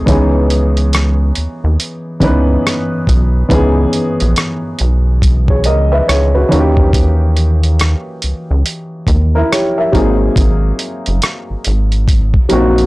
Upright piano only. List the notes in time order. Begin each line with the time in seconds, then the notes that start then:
0.06 E3 B3 C#4 D#4
0.10 G#4
2.20 E3 B3 C#4 D#4
2.24 B4
3.49 E3 B3 C#4 D#4
3.53 G#4
5.50 G#4 C#5
5.66 A#4 D#5
5.92 B4 E5
6.08 G#4 C#5
6.35 F#4 B4
6.49 E3 A#3 C#4 D#4 F#4
6.59 G4
9.35 E4 A#4
9.52 G4 C#5
9.78 A#4 E5
9.92 F#3 A#3 C4 D#4
9.96 G#4
12.49 F#3 A#3 C4 D#4
12.53 F#4